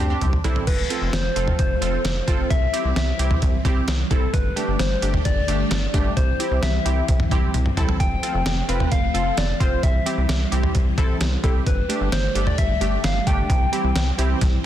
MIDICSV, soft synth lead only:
0, 0, Header, 1, 2, 480
1, 0, Start_track
1, 0, Tempo, 458015
1, 705, Time_signature, 4, 2, 24, 8
1, 15359, End_track
2, 0, Start_track
2, 0, Title_t, "Soft synth lead"
2, 0, Program_c, 0, 80
2, 0, Note_on_c, 0, 72, 101
2, 182, Note_off_c, 0, 72, 0
2, 463, Note_on_c, 0, 69, 80
2, 687, Note_off_c, 0, 69, 0
2, 704, Note_on_c, 0, 71, 92
2, 1185, Note_on_c, 0, 72, 100
2, 1201, Note_off_c, 0, 71, 0
2, 1659, Note_off_c, 0, 72, 0
2, 1665, Note_on_c, 0, 72, 104
2, 2625, Note_on_c, 0, 76, 118
2, 2640, Note_off_c, 0, 72, 0
2, 3102, Note_off_c, 0, 76, 0
2, 3108, Note_on_c, 0, 76, 105
2, 3785, Note_off_c, 0, 76, 0
2, 4303, Note_on_c, 0, 69, 85
2, 4544, Note_on_c, 0, 71, 93
2, 4559, Note_off_c, 0, 69, 0
2, 5016, Note_off_c, 0, 71, 0
2, 5022, Note_on_c, 0, 72, 99
2, 5470, Note_off_c, 0, 72, 0
2, 5502, Note_on_c, 0, 74, 106
2, 6464, Note_on_c, 0, 72, 109
2, 6480, Note_off_c, 0, 74, 0
2, 6943, Note_on_c, 0, 76, 111
2, 6959, Note_off_c, 0, 72, 0
2, 7664, Note_off_c, 0, 76, 0
2, 8383, Note_on_c, 0, 79, 121
2, 9344, Note_on_c, 0, 77, 106
2, 9360, Note_off_c, 0, 79, 0
2, 9578, Note_off_c, 0, 77, 0
2, 9584, Note_on_c, 0, 77, 96
2, 9827, Note_on_c, 0, 74, 95
2, 9842, Note_off_c, 0, 77, 0
2, 10058, Note_off_c, 0, 74, 0
2, 10064, Note_on_c, 0, 72, 87
2, 10288, Note_off_c, 0, 72, 0
2, 10305, Note_on_c, 0, 76, 92
2, 10983, Note_off_c, 0, 76, 0
2, 11990, Note_on_c, 0, 69, 78
2, 12097, Note_off_c, 0, 69, 0
2, 12230, Note_on_c, 0, 71, 93
2, 12674, Note_off_c, 0, 71, 0
2, 12706, Note_on_c, 0, 72, 98
2, 13041, Note_off_c, 0, 72, 0
2, 13066, Note_on_c, 0, 74, 92
2, 13177, Note_off_c, 0, 74, 0
2, 13188, Note_on_c, 0, 76, 108
2, 13665, Note_on_c, 0, 77, 108
2, 13681, Note_off_c, 0, 76, 0
2, 13898, Note_off_c, 0, 77, 0
2, 13904, Note_on_c, 0, 79, 119
2, 15359, Note_off_c, 0, 79, 0
2, 15359, End_track
0, 0, End_of_file